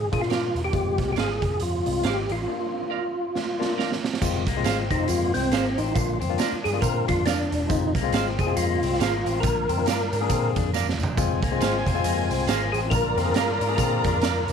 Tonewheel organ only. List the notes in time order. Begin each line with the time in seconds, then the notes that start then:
0.13 G#4
0.21 F4
0.64 G4
1.12 G4
1.19 G#4
1.62 F4
2.07 G4
2.32 F4
4.91 D#4
5.08 F4
5.34 C4
5.78 D#4
5.95 F4
6.64 G#4
6.81 A#4
7.08 F4
7.26 D4
7.70 D#4
8.39 G#4
8.57 F4
9.40 A#4
12.72 G#4
12.90 A#4
13.76 A#4